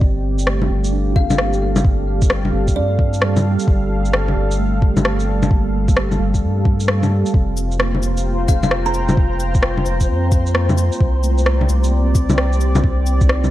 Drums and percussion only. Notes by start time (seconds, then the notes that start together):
0.01 kick
0.39 shaker
0.47 cross-stick
0.62 low bongo
0.84 shaker
1.16 kick
1.30 low bongo, shaker
1.38 cross-stick
1.53 shaker
1.76 low bongo, shaker
1.84 kick
2.22 kick, shaker
2.30 cross-stick
2.45 low bongo
2.68 kick, shaker
2.99 kick
3.13 shaker
3.22 cross-stick
3.36 low bongo, shaker
3.59 shaker
3.68 kick
4.05 shaker
4.13 cross-stick
4.28 low bongo
4.51 shaker
4.82 kick
4.97 low bongo, shaker
5.05 cross-stick
5.20 shaker
5.43 low bongo, shaker
5.51 kick
5.88 kick, shaker
5.97 cross-stick
6.12 low bongo, shaker
6.34 kick, shaker
6.65 kick
6.80 shaker
6.88 cross-stick
7.03 low bongo, shaker
7.26 shaker
7.34 kick
7.57 cabasa
7.72 shaker
7.80 cross-stick
7.95 low bongo
8.03 cabasa
8.17 cabasa, shaker
8.48 kick, cabasa
8.63 low bongo, shaker
8.71 cross-stick
8.86 shaker
8.94 cabasa
9.09 low bongo, shaker
9.17 kick
9.40 cabasa
9.54 kick, shaker
9.63 cross-stick
9.77 low bongo
9.86 cabasa
10.00 kick, cabasa, shaker
10.32 kick, cabasa
10.46 shaker
10.55 cross-stick
10.69 low bongo, shaker
10.78 cabasa
10.92 shaker
11.01 kick
11.23 cabasa
11.38 shaker
11.46 cross-stick
11.61 low bongo
11.69 cabasa
11.84 cabasa, shaker
12.15 kick, cabasa
12.30 low bongo, shaker
12.38 cross-stick
12.53 shaker
12.61 cabasa
12.75 low bongo, shaker
12.84 kick
13.06 cabasa
13.21 kick, shaker
13.29 cross-stick
13.44 low bongo, shaker